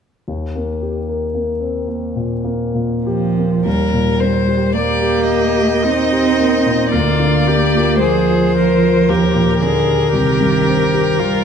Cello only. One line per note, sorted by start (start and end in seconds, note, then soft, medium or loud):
3.06 3.67 F3 medium
3.65 4.77 G3 soft
4.75 5.86 A#3 medium
5.84 6.92 C4 medium
6.93 8.02 A#3 soft
8.01 9.60 F3 medium
9.61 10.14 D3 soft
10.13 11.21 D#3 soft
11.20 11.44 G3 medium